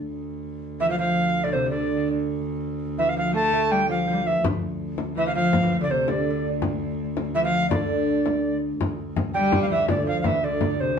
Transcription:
0.07 4.44 D2 medium
0.80 0.88 E3 medium
0.80 0.89 E3 medium
0.80 0.89 E5 medium
0.89 0.97 F3 medium
0.89 0.98 F3 medium
0.89 0.98 F5 medium
0.98 1.40 F3 medium
0.98 1.45 F3 medium
0.98 1.45 F5 loud
1.44 1.53 D3 medium
1.44 1.55 D3 medium
1.44 1.54 D5 medium
1.53 1.65 C3 medium
1.53 1.73 C3 medium
1.53 1.70 C5 medium
1.65 1.71 E3 medium
1.70 2.09 D3 medium
1.70 1.94 D3 medium
1.70 2.09 D5 medium
1.95 2.11 D3 medium
2.98 3.09 E3 medium
2.98 3.17 E3 medium
2.98 3.10 E5 medium
3.07 3.14 F3 medium
3.07 3.17 F5 medium
3.15 3.35 F3 medium
3.15 3.34 F5 medium
3.33 3.72 A3 loud
3.33 3.52 A3 medium
3.33 3.73 A5 loud
3.53 3.87 A3 medium
3.71 3.88 G3 medium
3.71 3.89 G5 medium
3.89 4.06 F3 medium
3.89 4.28 F5 medium
4.07 4.14 F3 medium
4.07 4.26 F3 medium
4.13 4.23 G3 medium
4.22 4.44 F3 medium
4.27 4.43 E3 medium
4.27 4.44 E5 medium
4.44 8.80 D2 medium
4.44 frame drum medium
4.98 frame drum medium
5.16 5.33 E3 medium
5.16 5.26 E3 medium
5.16 5.26 E5 medium
5.26 5.34 F3 medium
5.26 5.35 F5 loud
5.34 5.76 F3 medium
5.34 5.60 F3 medium
5.34 5.77 F5 loud
5.34 frame drum soft
5.53 frame drum medium
5.63 5.80 E3 medium
5.80 5.91 D3 medium
5.80 5.89 D3 medium
5.80 5.92 D5 medium
5.89 6.11 C3 medium
5.89 6.08 C3 medium
5.89 6.11 C5 medium
6.08 6.29 D3 medium
6.08 6.49 D3 medium
6.08 6.49 D5 medium
6.08 frame drum medium
6.30 6.47 D3 medium
6.44 frame drum soft
6.62 frame drum medium
7.17 frame drum medium
7.35 7.43 E3 medium
7.35 7.44 E3 medium
7.35 7.43 E5 medium
7.43 7.69 F3 medium
7.43 7.72 F3 medium
7.43 7.69 F5 loud
7.53 frame drum soft
7.70 8.57 D3 medium
7.70 8.58 D3 medium
7.70 8.57 D5 medium
7.70 frame drum medium
7.90 frame drum soft
8.08 frame drum soft
8.26 frame drum medium
8.80 10.99 D2 medium
8.80 frame drum medium
9.16 frame drum medium
9.34 9.61 G3 medium
9.34 9.73 G3 medium
9.34 9.59 G5 medium
9.34 frame drum soft
9.52 frame drum medium
9.62 9.71 F3 medium
9.62 9.66 F5 medium
9.70 9.89 E3 medium
9.70 9.90 E3 medium
9.70 9.88 E5 medium
9.88 10.09 D3 medium
9.88 10.07 D3 medium
9.88 10.06 D5 medium
9.88 frame drum medium
10.07 10.25 F3 medium
10.07 10.20 F5 medium
10.21 10.28 F5 medium
10.21 frame drum medium
10.25 10.43 E3 medium
10.25 10.42 E3 medium
10.25 10.46 E5 medium
10.43 10.80 D3 medium
10.43 10.82 D3 medium
10.43 10.82 D5 medium
10.43 frame drum soft
10.61 frame drum medium
10.80 10.96 C3 medium
10.80 10.98 C3 medium
10.80 10.98 C5 medium

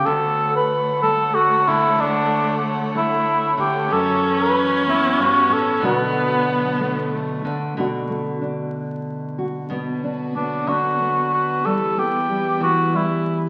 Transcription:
0.00 3.85 D3 medium
0.00 1.02 A3 medium
0.00 3.85 A4 medium
0.00 3.84 F#5 medium
0.04 1.97 D2 medium
0.04 3.85 A3 medium
0.04 3.86 A3 medium
0.04 0.54 A4 medium
0.04 5.77 C#5 medium
0.56 1.00 B4 medium
1.02 1.94 A3 medium
1.02 1.36 A4 medium
1.35 1.69 F#4 medium
1.68 3.56 D3 medium
1.68 2.02 E4 medium
1.99 3.89 D2 medium
1.99 2.68 D4 medium
2.95 3.86 A3 medium
2.95 3.55 E4 medium
3.58 3.89 D3 medium
3.58 3.94 G4 medium
3.89 5.17 F#2 medium
3.89 5.80 E3 medium
3.89 5.80 B3 medium
3.89 5.82 C#4 loud
3.89 5.80 F#4 medium
3.89 4.39 A4 medium
3.89 7.73 B4 medium
4.41 4.84 B4 medium
4.87 5.83 B3 medium
4.87 5.23 E4 medium
5.18 5.49 G2 medium
5.18 5.54 F#4 medium
5.49 5.81 A2 medium
5.49 5.83 A4 medium
5.80 7.44 B2 medium
5.80 7.44 D3 medium
5.80 7.74 F#3 medium
5.80 6.79 A3 medium
5.80 7.10 B3 medium
5.80 7.74 B3 medium
5.80 7.74 D4 medium
5.80 7.74 A4 medium
5.84 7.74 D4 medium
5.84 7.74 F#4 medium
5.84 7.10 B4 medium
6.80 7.73 A3 medium
7.12 7.73 A3 medium
7.45 7.77 D3 medium
7.77 9.66 B2 medium
7.77 10.66 D3 soft
7.77 8.08 A3 soft
7.77 8.40 D4 soft
7.77 9.37 F#4 medium
8.09 9.66 A3 soft
8.42 9.66 D4 soft
9.38 9.66 F#4 soft
9.68 10.67 B2 medium
9.68 11.61 D3 medium
9.68 11.61 F#3 soft
9.68 13.49 B3 soft
9.68 10.35 B3 soft
9.68 11.61 F#4 medium
9.68 13.49 B4 medium
10.04 10.66 D4 soft
10.35 10.99 B3 soft
10.35 10.70 D4 medium
10.67 11.63 D3 soft
10.67 11.60 D4 soft
10.67 11.32 F#4 medium
11.00 11.60 B3 soft
11.34 11.67 F#4 medium
11.62 13.49 E2 medium
11.62 13.49 E3 medium
11.62 13.49 G3 medium
11.62 12.28 G3 soft
11.62 13.49 E4 medium
11.62 12.00 A4 medium
11.97 12.60 B3 soft
11.97 12.61 G4 medium
12.29 12.92 G3 soft
12.60 13.49 E3 medium
12.60 13.49 B3 soft
12.60 12.97 F#4 medium
12.93 13.49 G3 medium
12.93 13.42 E4 medium

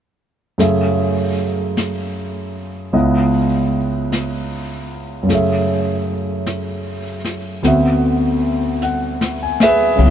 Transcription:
0.58 2.94 F#2 soft
0.58 2.91 C#3 soft
0.58 2.94 A3 soft
0.58 2.94 G#4 soft
0.58 2.95 E5 soft
0.58 brush sweep soft
0.58 snare soft
1.77 brush sweep soft
1.77 snare soft
1.77 hi-hat pedal soft
2.93 5.28 C#2 soft
2.93 5.25 C#3 soft
2.93 5.28 B3 soft
2.93 5.29 E4 soft
2.93 5.29 D#5 soft
2.93 brush sweep soft
4.12 brush sweep soft
4.12 snare soft
4.12 hi-hat pedal soft
5.23 7.61 F#2 soft
5.23 7.63 C#3 soft
5.29 7.64 A3 soft
5.29 7.65 G#4 soft
5.29 brush sweep soft
5.29 snare soft
5.35 7.66 E5 soft
6.46 brush sweep soft
6.46 snare soft
6.46 hi-hat pedal soft
7.24 snare soft
7.63 9.98 D2 soft
7.63 9.99 D3 soft
7.63 9.99 B3 soft
7.63 10.00 C4 soft
7.63 10.00 F#4 soft
7.63 brush sweep soft
7.63 snare soft
7.67 9.61 E5 soft
8.82 9.77 F#5 soft
8.82 hi-hat pedal soft
9.21 snare soft
9.43 10.10 G#5 soft
9.60 10.10 G#4 soft
9.60 10.10 B4 medium
9.60 10.10 E5 medium
9.60 snare soft
9.96 10.10 C#2 medium
9.96 10.10 C#3 soft
9.96 10.10 F#3 soft
9.96 brush sweep soft
9.96 kick medium
9.96 ride soft
10.03 10.10 B3 soft
10.03 10.10 E4 soft

